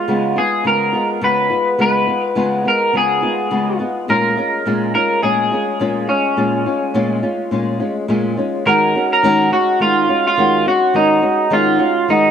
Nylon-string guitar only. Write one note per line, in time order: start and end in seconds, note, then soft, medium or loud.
0.08 0.37 C#3 medium
0.08 0.37 G#3 medium
0.08 0.36 B3 medium
0.08 0.35 F4 medium
0.36 0.64 G#3 soft
0.36 0.64 B3 soft
0.36 0.65 F4 medium
0.64 0.93 C#3 medium
0.64 0.94 G#3 medium
0.64 0.93 B3 medium
0.64 0.91 F4 medium
0.92 1.20 G#3 soft
0.92 1.21 B3 soft
0.92 1.22 F4 medium
1.21 1.51 C#3 medium
1.21 1.50 G#3 medium
1.21 1.50 B3 medium
1.21 1.49 F4 medium
1.50 1.78 G#3 soft
1.50 1.78 B3 soft
1.50 1.78 F4 medium
1.78 2.07 C#3 medium
1.78 2.08 G#3 medium
1.78 2.07 B3 medium
1.78 2.06 F4 medium
2.07 2.35 G#3 soft
2.07 2.35 B3 soft
2.07 2.36 F4 medium
2.35 2.65 C#3 medium
2.35 2.65 G#3 medium
2.35 2.64 B3 medium
2.35 2.63 F4 medium
2.64 2.93 G#3 soft
2.64 2.93 B3 soft
2.64 2.93 F4 soft
2.93 3.22 C#3 medium
2.93 3.22 G#3 medium
2.93 3.22 B3 medium
2.93 3.21 F4 medium
3.22 3.50 G#3 soft
3.22 3.50 B3 soft
3.22 3.50 F4 medium
3.50 3.79 C#3 medium
3.50 3.79 G#3 medium
3.50 3.79 B3 medium
3.50 3.78 F4 medium
3.79 4.08 G#3 soft
3.79 4.08 B3 medium
3.79 4.08 F4 medium
4.08 4.37 A#2 medium
4.08 4.37 G#3 medium
4.08 4.37 C#4 medium
4.08 4.36 F4 medium
4.37 4.65 G#3 soft
4.37 4.66 C#4 soft
4.37 4.65 F4 medium
4.66 4.94 A#2 medium
4.66 4.94 G#3 medium
4.66 4.94 C#4 medium
4.66 4.94 F4 medium
4.95 5.22 G#3 soft
4.95 5.22 C#4 soft
4.95 5.23 F4 medium
5.22 5.51 A#2 medium
5.22 5.51 G#3 medium
5.22 5.51 C#4 medium
5.22 5.50 F4 medium
5.52 5.79 G#3 soft
5.52 5.80 C#4 soft
5.52 5.80 F4 medium
5.80 6.08 A#2 medium
5.80 6.09 G#3 medium
5.80 6.08 C#4 medium
5.80 6.07 F4 medium
6.08 6.36 G#3 soft
6.08 6.37 C#4 soft
6.08 6.37 F4 soft
6.37 6.65 A#2 medium
6.37 6.65 G#3 medium
6.37 6.66 C#4 medium
6.37 6.65 F4 medium
6.66 6.93 G#3 soft
6.66 6.94 C#4 soft
6.66 6.94 F4 medium
6.94 7.22 A#2 medium
6.94 7.23 G#3 medium
6.94 7.22 C#4 medium
6.94 7.22 F4 medium
7.23 7.51 G#3 soft
7.23 7.51 C#4 medium
7.23 7.51 F4 medium
7.51 7.79 A#2 medium
7.51 7.80 G#3 medium
7.51 7.79 C#4 medium
7.51 7.78 F4 medium
7.80 8.07 G#3 soft
7.80 8.08 C#4 medium
7.80 8.08 F4 medium
8.08 8.37 A#2 medium
8.08 8.37 G#3 medium
8.08 8.37 C#4 medium
8.08 8.36 F4 medium
8.37 8.65 G#3 soft
8.37 8.65 C#4 soft
8.37 8.65 F4 medium
8.66 8.94 D#3 medium
8.66 8.94 G#3 medium
8.66 8.94 C#4 medium
8.66 8.93 F#4 medium
8.95 9.23 G#3 medium
8.95 9.23 C#4 soft
8.95 9.23 F#4 medium
9.23 9.51 D#3 medium
9.23 9.52 G#3 medium
9.23 9.51 C#4 medium
9.23 9.50 F#4 medium
9.51 9.79 G#3 soft
9.51 9.80 C#4 medium
9.51 9.79 F#4 medium
9.79 10.08 D#3 medium
9.79 10.08 G#3 medium
9.79 10.08 C#4 medium
9.79 10.06 F#4 medium
10.08 10.37 G#3 soft
10.08 10.37 C#4 medium
10.08 10.36 F#4 medium
10.37 10.65 D#3 medium
10.37 10.66 G#3 medium
10.37 10.66 C#4 medium
10.37 10.64 F#4 medium
10.65 10.93 G#3 soft
10.65 10.94 C#4 soft
10.65 10.94 F#4 medium
10.94 11.22 D#3 medium
10.94 11.22 G#3 medium
10.94 11.22 C#4 medium
10.94 11.20 F#4 medium
11.21 11.50 G#3 soft
11.21 11.50 C#4 medium
11.21 11.50 F#4 medium
11.50 11.79 D#3 medium
11.50 11.79 G#3 medium
11.50 11.78 C#4 medium
11.50 11.77 F#4 loud
11.79 12.08 G#3 soft
11.79 12.08 C#4 medium
11.79 12.07 F#4 medium
12.08 12.31 D#3 medium
12.08 12.31 G#3 medium
12.08 12.31 C#4 medium
12.08 12.31 F#4 medium